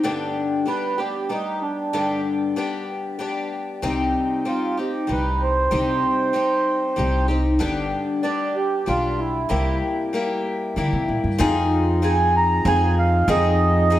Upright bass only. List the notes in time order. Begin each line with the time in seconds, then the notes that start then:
3.83 C2
5.09 C2
5.72 C2
6.98 C2
7.61 G1
8.88 B1
9.51 C2
10.77 D3
10.93 C3
11.08 A#2
11.24 G2
11.40 F2
12.65 F2
13.28 F2